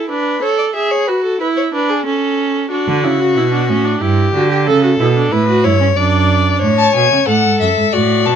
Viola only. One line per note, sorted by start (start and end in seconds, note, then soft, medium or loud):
0.10 0.42 D4 medium
0.42 0.75 A4 medium
0.75 1.10 G#4 medium
1.08 1.40 F#4 medium
1.41 1.73 E4 medium
1.74 2.05 D4 medium
2.06 2.70 C#4 medium
2.71 3.05 D4 medium
3.04 3.21 E4 medium
3.20 3.36 F#4 medium
3.36 3.43 E4 medium
3.53 3.68 D4 medium
3.69 3.87 C#4 medium
3.85 4.03 D4 medium
4.01 4.33 E4 medium
4.34 4.50 F#4 medium
4.50 4.57 G4 medium
4.66 4.82 A4 medium
4.83 4.90 F#4 medium
4.99 5.06 E4 medium
5.16 5.33 D4 medium
5.32 5.48 E4 medium
5.48 5.66 F#4 medium
5.64 5.80 E4 medium
5.81 5.87 C#4 medium
5.97 6.61 D4 medium